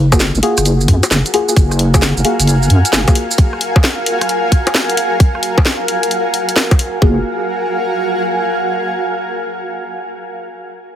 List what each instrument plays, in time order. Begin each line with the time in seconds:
Already playing: wobble bass F#1, ambient pad F#4 A#4
0.12 synth stab A#3 F4 F#4 G#4, kick, high bongo, maracas
0.20 snare, maracas
0.35 wobble bass F#1, maracas
0.41 synth stab A#3 F4 F#4 G#4, ambient pad F5, open hi-hat
0.57 wobble bass F#1, cross-stick, closed hi-hat, maracas
0.65 closed hi-hat, maracas
0.72 ambient pad G#5
0.81 maracas
0.88 wobble bass F#2, kick, cross-stick, open hi-hat
1.03 closed hi-hat, high bongo, maracas
1.11 wobble bass F#1, snare, maracas
1.26 closed hi-hat, maracas
1.34 synth stab A#3 F4 F#4 G#4, open hi-hat
1.49 synth stab A#3 F4 F#4 G#4, maracas
1.56 wobble bass F#1, kick, closed hi-hat, maracas
1.71 cross-stick, maracas
1.79 open hi-hat
1.94 synth stab A#3 F4 F#4 G#4, kick, high bongo, maracas
2.02 snare, maracas
2.17 wobble bass F#1, maracas
2.25 synth stab A#3 F4 F#4 G#4, open hi-hat
2.40 wobble bass F#1, closed hi-hat, maracas
2.47 closed hi-hat, maracas
2.63 maracas
2.70 wobble bass F#2, open hi-hat
2.85 closed hi-hat, maracas
2.93 wobble bass F#1, snare, maracas
3.08 synth stab A#3 F4 F#4 G#4, kick, closed hi-hat, high bongo, maracas
3.15 open hi-hat
3.31 maracas
3.38 kick, closed hi-hat
3.53 cross-stick
3.61 open hi-hat
3.76 kick, high bongo
3.84 snare
4.06 open hi-hat
4.21 cross-stick, closed hi-hat
4.29 closed hi-hat
4.52 kick, cross-stick, open hi-hat
4.67 closed hi-hat, high bongo
4.75 snare
4.90 closed hi-hat
4.97 open hi-hat
5.20 kick, closed hi-hat
5.35 cross-stick
5.43 open hi-hat
5.58 kick, high bongo
5.66 snare
5.88 open hi-hat
6.03 closed hi-hat
6.11 closed hi-hat
6.34 open hi-hat
6.49 closed hi-hat
6.56 snare
6.71 kick, closed hi-hat, high bongo
6.79 open hi-hat
7.02 wobble bass F#1, synth stab A#3 F4 F#4 G#4, ambient pad F#4, kick
7.11 ambient pad A#4
7.18 ambient pad F5
7.23 ambient pad G#5